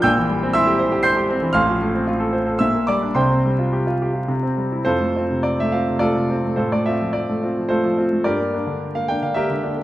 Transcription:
<<
  \new Staff \with { instrumentName = "Grand piano" } { \time 3/4 \key f \major \tempo 4 = 108 <g'' e''' g'''>4 <e'' c''' e'''>4 <c''' g''' c''''>4 | <f'' c''' f'''>2 <e'' e'''>8 <d'' d'''>8 | <c'' g'' c'''>2~ <c'' g'' c'''>8 r8 | <f' a' c''>4 d''16 e''16 f''8 <f' a' d''>4 |
<f' a' c''>16 d''16 e''8 d''4 <f' a' c''>4 | <g' bes' d''>4~ <g' bes' d''>16 f''16 g''16 f''16 <g' bes' e''>4 | }
  \new Staff \with { instrumentName = "Grand piano" } { \time 3/4 \key f \major <bes,, bes,>16 e16 g16 c'16 e'16 g'16 c''16 g'16 c''16 g'16 c'16 e16 | <a,, a,>16 f16 a16 c'16 f'16 a'16 c''16 a'16 bes,16 bes16 g16 d'16 | <c, c>16 c'16 g16 f'16 g'16 f'16 g'16 f'16 c16 c'16 g16 e'16 | f,16 a16 <c' f'>16 c8 a16 <c' f'>16 c16 a16 c16 <c' f'>16 a16 |
a,16 a16 <c' f'>16 f8 a16 <c' f'>16 f16 a16 f16 <c' f'>16 a16 | g,16 bes16 <bes d'>16 d8 bes16 <bes d'>16 d16 bes16 d16 <bes d'>16 bes16 | }
>>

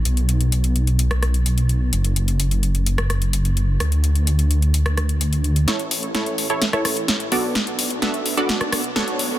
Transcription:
<<
  \new Staff \with { instrumentName = "Supersaw synth" } { \time 4/4 \key a \major \tempo 4 = 128 r1 | r1 | r1 | <e' a' cis''>4 <e' a' cis''>8. <e' a' cis''>16 r16 <e' a' cis''>4~ <e' a' cis''>16 <b d' fis' a' d''>8~ |
<b d' fis' a' d''>4 <b d' fis' a' e''>8. <b d' fis' a' d''>4 r16 <b d' fis' a' cis''>4 | }
  \new Staff \with { instrumentName = "Detuned saw bass" } { \clef bass \time 4/4 \key a \major b,,1 | fis,,1 | d,1 | a,,4 a,,8. a,,8 a,,4~ a,,16 b,,8~ |
b,,4 b,,8. b,,4~ b,,16 b,,4 | }
  \new DrumStaff \with { instrumentName = "Drums" } \drummode { \time 4/4 hh16 hh16 hh16 hh16 hh16 hh16 hh16 hh16 hh16 <hh ss>16 <hh ss>16 hh16 hh16 hh16 hh8 | hh16 hh16 hh16 hh16 hh16 hh16 hh16 hh16 hh16 <hh ss>16 <hh ss>16 hh16 hh16 hh16 hh8 | <hh ss>16 hh16 hh16 hh16 hh16 hh16 hh16 hh16 hh16 <hh ss>16 <hh ss>16 hh16 hh16 hh16 hh16 hh16 | <hh sn>16 hh16 hho16 hh16 <hh sn>16 hh16 hho16 hh16 <hh sn>16 <hh ss>16 <hho ss>16 hh16 <hh sn>16 hh16 hho8 |
<hh sn>16 hh16 hho16 hh16 <hh sn>16 hh16 hho16 hh16 <hh sn>16 <hh ss>16 <hho ss>16 hh16 <hh sn>16 hh16 hho8 | }
>>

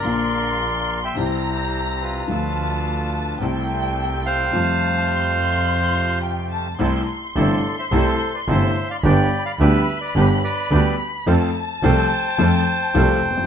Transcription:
<<
  \new Staff \with { instrumentName = "Violin section" } { \time 4/4 \key f \major \tempo 4 = 107 c'''2 bes''2 | a''2 g''2 | a''4 c'''2 g''8 a''8 | \key c \major c'''1 |
b''1 | a''1 | }
  \new Staff \with { instrumentName = "Bandoneon" } { \time 4/4 \key f \major <bes' d''>4.~ <bes' d''>16 <e'' g''>8 r4 r16 <f' b'>8~ | <f' b'>2 r4. <c'' f''>8~ | <c'' f''>2. r4 | \key c \major r4 <a' d''>8. <c'' e''>16 <a' c''>8. <b' d''>16 <c'' e''>8. <d'' f''>16 |
<d'' g''>8. <d'' f''>16 <b' e''>8. <b' d''>16 <g' b'>8 <b' d''>4 r8 | r4 <c'' g''>2. | }
  \new Staff \with { instrumentName = "Bandoneon" } { \time 4/4 \key f \major <d' f' bes'>2 <c' e' g'>2 | <d' f' a'>2 <c' e' a'>2 | <a f' g'>1 | \key c \major <c' e' a'>8 r8 <c' e' a'>8 r8 <c' e' a'>8 r8 <c' e' a'>8 r8 |
<b d' g'>8 r8 <b d' g'>8 r8 <b d' g'>8 r8 <b d' g'>8 r8 | <c' f' a'>8 r8 <c' f' a'>8 r8 <c' f' a'>8 r8 <c' f' a'>8 r8 | }
  \new Staff \with { instrumentName = "Upright piano" } { \clef bass \time 4/4 \key f \major <bes,, bes, d f bes f'>2 <c, c e g e'>2 | <d, d f a f'>2 <c, c g a e'>2 | <f, c f g a f'>1 | \key c \major <c, c g a e'>8 r8 <g,, g, c g a e'>8 r8 <c, c g a e'>8 r8 <g,, g, c g a e'>8 r8 |
<g,, g, d g b g'>8 r8 <d, d g b g'>8 r8 <g,, g, d g b g'>8 r8 <d, d g b g'>8 r8 | <f, f a c' a'>8 r8 <c, c f a c' a'>8 r8 <f, f a c' a'>8 r8 <c, c f a c' a'>8 r32 e,32 f,32 r32 | }
  \new Staff \with { instrumentName = "Double bass" } { \clef bass \time 4/4 \key f \major bes,,2 c,2 | d,2 c,2 | f,1 | \key c \major c,8 r8 g,,8 r8 c,8 r8 g,,8 r8 |
g,,8 r8 d,8 r8 g,,8 r8 d,8 r8 | f,8 r8 c,8 r8 f,8 r8 c,8 f,,8 | }
>>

